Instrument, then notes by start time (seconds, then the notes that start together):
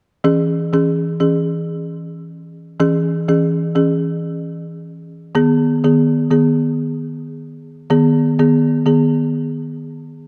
marimba
0.24 E3 C#4 G#4
0.73 E3 C#4 G#4
1.20 E3 C#4 G#4
2.80 E3 C#4 G#4
3.28 E3 C#4 G#4
3.75 E3 C#4 G#4
5.35 D#3 B3 G#4
5.84 D#3 B3 G#4
6.31 D#3 B3 G#4
7.90 D#3 B3 G#4
8.39 D#3 B3 G#4
8.86 D#3 B3 G#4